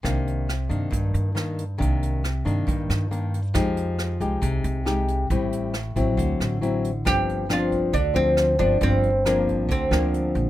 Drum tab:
HH |xxxxxxxx|xxxxxxxx|xxxxxxxx|xxxxxxxx|
SD |r-r---r-|--r--r--|r-r---r-|--r--r--|
BD |o---o---|o---o---|o---o---|o--oo---|

HH |xxxxxxxx|xxxxxxxx|
SD |r-r---r-|--r--r--|
BD |o--oo--o|o--oo--o|